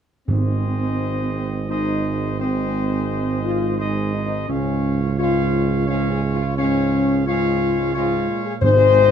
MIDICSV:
0, 0, Header, 1, 6, 480
1, 0, Start_track
1, 0, Key_signature, -4, "major"
1, 0, Tempo, 701754
1, 196, Time_signature, 3, 2, 24, 8
1, 3073, Tempo, 688073
1, 6296, End_track
2, 0, Start_track
2, 0, Title_t, "Trumpet section"
2, 0, Program_c, 0, 61
2, 192, Note_on_c, 0, 75, 60
2, 194, Note_on_c, 0, 72, 60
2, 1134, Note_off_c, 0, 75, 0
2, 1135, Note_off_c, 0, 72, 0
2, 1161, Note_on_c, 0, 72, 59
2, 1161, Note_on_c, 0, 75, 58
2, 1613, Note_off_c, 0, 72, 0
2, 1614, Note_off_c, 0, 75, 0
2, 1643, Note_on_c, 0, 75, 62
2, 1645, Note_on_c, 0, 72, 61
2, 2568, Note_off_c, 0, 75, 0
2, 2569, Note_off_c, 0, 72, 0
2, 2591, Note_on_c, 0, 72, 59
2, 2593, Note_on_c, 0, 75, 58
2, 3044, Note_off_c, 0, 72, 0
2, 3045, Note_off_c, 0, 75, 0
2, 3068, Note_on_c, 0, 73, 62
2, 3068, Note_on_c, 0, 77, 62
2, 3549, Note_off_c, 0, 73, 0
2, 3550, Note_off_c, 0, 77, 0
2, 3557, Note_on_c, 0, 73, 65
2, 3558, Note_on_c, 0, 77, 66
2, 4012, Note_off_c, 0, 73, 0
2, 4013, Note_off_c, 0, 77, 0
2, 4035, Note_on_c, 0, 73, 65
2, 4037, Note_on_c, 0, 77, 68
2, 4496, Note_off_c, 0, 73, 0
2, 4497, Note_off_c, 0, 77, 0
2, 4523, Note_on_c, 0, 77, 66
2, 4524, Note_on_c, 0, 73, 67
2, 4977, Note_off_c, 0, 77, 0
2, 4978, Note_off_c, 0, 73, 0
2, 5005, Note_on_c, 0, 73, 72
2, 5007, Note_on_c, 0, 77, 74
2, 5453, Note_off_c, 0, 73, 0
2, 5454, Note_off_c, 0, 77, 0
2, 5475, Note_on_c, 0, 73, 67
2, 5479, Note_on_c, 0, 77, 69
2, 5922, Note_off_c, 0, 73, 0
2, 5924, Note_off_c, 0, 77, 0
2, 5951, Note_on_c, 0, 75, 81
2, 5952, Note_on_c, 0, 72, 78
2, 6296, Note_off_c, 0, 72, 0
2, 6296, Note_off_c, 0, 75, 0
2, 6296, End_track
3, 0, Start_track
3, 0, Title_t, "French horn section"
3, 0, Program_c, 1, 60
3, 194, Note_on_c, 1, 60, 80
3, 893, Note_off_c, 1, 60, 0
3, 921, Note_on_c, 1, 60, 74
3, 1146, Note_off_c, 1, 60, 0
3, 1161, Note_on_c, 1, 63, 78
3, 1496, Note_off_c, 1, 63, 0
3, 1525, Note_on_c, 1, 63, 70
3, 1578, Note_off_c, 1, 63, 0
3, 1637, Note_on_c, 1, 60, 81
3, 2328, Note_off_c, 1, 60, 0
3, 2351, Note_on_c, 1, 65, 78
3, 2575, Note_off_c, 1, 65, 0
3, 2591, Note_on_c, 1, 63, 67
3, 2824, Note_off_c, 1, 63, 0
3, 2832, Note_on_c, 1, 63, 78
3, 2869, Note_off_c, 1, 63, 0
3, 2913, Note_on_c, 1, 63, 75
3, 3062, Note_off_c, 1, 63, 0
3, 3066, Note_on_c, 1, 61, 80
3, 3407, Note_off_c, 1, 61, 0
3, 3441, Note_on_c, 1, 65, 73
3, 3494, Note_off_c, 1, 65, 0
3, 3558, Note_on_c, 1, 65, 91
3, 4013, Note_off_c, 1, 65, 0
3, 4040, Note_on_c, 1, 61, 86
3, 4192, Note_off_c, 1, 61, 0
3, 4204, Note_on_c, 1, 68, 89
3, 4277, Note_off_c, 1, 68, 0
3, 4368, Note_on_c, 1, 65, 87
3, 4517, Note_off_c, 1, 65, 0
3, 4527, Note_on_c, 1, 61, 93
3, 4979, Note_off_c, 1, 61, 0
3, 5005, Note_on_c, 1, 65, 93
3, 5476, Note_off_c, 1, 65, 0
3, 5485, Note_on_c, 1, 65, 92
3, 5811, Note_off_c, 1, 65, 0
3, 5839, Note_on_c, 1, 68, 92
3, 5891, Note_off_c, 1, 68, 0
3, 5949, Note_on_c, 1, 72, 120
3, 6296, Note_off_c, 1, 72, 0
3, 6296, End_track
4, 0, Start_track
4, 0, Title_t, "Trombone section"
4, 0, Program_c, 2, 61
4, 197, Note_on_c, 2, 56, 59
4, 198, Note_on_c, 2, 44, 61
4, 1136, Note_off_c, 2, 56, 0
4, 1137, Note_off_c, 2, 44, 0
4, 1166, Note_on_c, 2, 56, 60
4, 1171, Note_on_c, 2, 44, 63
4, 1616, Note_off_c, 2, 56, 0
4, 1618, Note_off_c, 2, 44, 0
4, 1654, Note_on_c, 2, 44, 63
4, 1655, Note_on_c, 2, 56, 65
4, 2574, Note_off_c, 2, 44, 0
4, 2575, Note_off_c, 2, 56, 0
4, 2598, Note_on_c, 2, 44, 65
4, 2600, Note_on_c, 2, 56, 64
4, 3047, Note_off_c, 2, 44, 0
4, 3048, Note_off_c, 2, 56, 0
4, 3082, Note_on_c, 2, 56, 63
4, 3085, Note_on_c, 2, 44, 62
4, 3532, Note_off_c, 2, 56, 0
4, 3533, Note_off_c, 2, 44, 0
4, 3570, Note_on_c, 2, 44, 65
4, 3572, Note_on_c, 2, 56, 64
4, 4019, Note_off_c, 2, 44, 0
4, 4020, Note_off_c, 2, 56, 0
4, 4050, Note_on_c, 2, 44, 72
4, 4050, Note_on_c, 2, 56, 70
4, 4418, Note_off_c, 2, 44, 0
4, 4418, Note_off_c, 2, 56, 0
4, 4537, Note_on_c, 2, 44, 70
4, 4542, Note_on_c, 2, 56, 69
4, 4984, Note_off_c, 2, 44, 0
4, 4987, Note_off_c, 2, 56, 0
4, 5014, Note_on_c, 2, 56, 73
4, 5018, Note_on_c, 2, 44, 73
4, 5457, Note_off_c, 2, 56, 0
4, 5459, Note_off_c, 2, 44, 0
4, 5483, Note_on_c, 2, 56, 79
4, 5488, Note_on_c, 2, 44, 77
4, 5704, Note_off_c, 2, 44, 0
4, 5711, Note_on_c, 2, 46, 69
4, 5926, Note_off_c, 2, 56, 0
4, 5950, Note_off_c, 2, 46, 0
4, 5955, Note_on_c, 2, 48, 86
4, 5962, Note_on_c, 2, 56, 80
4, 6296, Note_off_c, 2, 48, 0
4, 6296, Note_off_c, 2, 56, 0
4, 6296, End_track
5, 0, Start_track
5, 0, Title_t, "Timpani"
5, 0, Program_c, 3, 47
5, 192, Note_on_c, 3, 44, 76
5, 892, Note_off_c, 3, 44, 0
5, 5949, Note_on_c, 3, 44, 84
5, 6296, Note_off_c, 3, 44, 0
5, 6296, End_track
6, 0, Start_track
6, 0, Title_t, "Tuba"
6, 0, Program_c, 4, 58
6, 196, Note_on_c, 4, 32, 61
6, 3046, Note_off_c, 4, 32, 0
6, 3072, Note_on_c, 4, 37, 67
6, 5734, Note_off_c, 4, 37, 0
6, 5955, Note_on_c, 4, 32, 90
6, 6296, Note_off_c, 4, 32, 0
6, 6296, End_track
0, 0, End_of_file